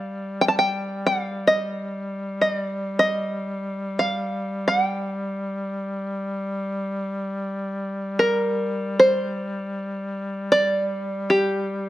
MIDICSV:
0, 0, Header, 1, 3, 480
1, 0, Start_track
1, 0, Key_signature, -2, "minor"
1, 0, Tempo, 500000
1, 11415, End_track
2, 0, Start_track
2, 0, Title_t, "Five-string banjo"
2, 0, Program_c, 0, 105
2, 0, Note_on_c, 0, 77, 86
2, 393, Note_off_c, 0, 77, 0
2, 397, Note_on_c, 0, 79, 76
2, 460, Note_off_c, 0, 79, 0
2, 464, Note_on_c, 0, 81, 72
2, 557, Note_off_c, 0, 81, 0
2, 564, Note_on_c, 0, 79, 80
2, 1019, Note_off_c, 0, 79, 0
2, 1022, Note_on_c, 0, 77, 77
2, 1416, Note_on_c, 0, 75, 79
2, 1429, Note_off_c, 0, 77, 0
2, 2314, Note_off_c, 0, 75, 0
2, 2318, Note_on_c, 0, 75, 64
2, 2443, Note_off_c, 0, 75, 0
2, 2443, Note_on_c, 0, 74, 64
2, 2868, Note_off_c, 0, 74, 0
2, 2872, Note_on_c, 0, 75, 70
2, 3832, Note_on_c, 0, 77, 80
2, 3855, Note_off_c, 0, 75, 0
2, 4486, Note_off_c, 0, 77, 0
2, 4490, Note_on_c, 0, 78, 74
2, 4663, Note_off_c, 0, 78, 0
2, 4663, Note_on_c, 0, 79, 74
2, 6443, Note_off_c, 0, 79, 0
2, 7865, Note_on_c, 0, 70, 88
2, 8631, Note_off_c, 0, 70, 0
2, 8635, Note_on_c, 0, 72, 89
2, 10093, Note_off_c, 0, 72, 0
2, 10097, Note_on_c, 0, 74, 94
2, 10847, Note_on_c, 0, 67, 85
2, 10869, Note_off_c, 0, 74, 0
2, 11415, Note_off_c, 0, 67, 0
2, 11415, End_track
3, 0, Start_track
3, 0, Title_t, "Duduk"
3, 0, Program_c, 1, 69
3, 0, Note_on_c, 1, 55, 46
3, 11415, Note_off_c, 1, 55, 0
3, 11415, End_track
0, 0, End_of_file